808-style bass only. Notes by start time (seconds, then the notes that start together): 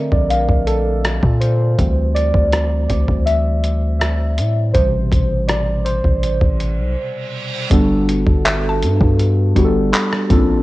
0.12 A#1
0.49 A#1
1.23 A#2
1.79 D2
2.34 D2
2.90 D2
3.08 D2
4.38 A2
4.75 A1
5.12 A1
6.05 A1
6.42 A1
6.79 B1
7.71 G1
8.27 G1
8.83 G2
9.01 G2
9.56 G1
10.30 A1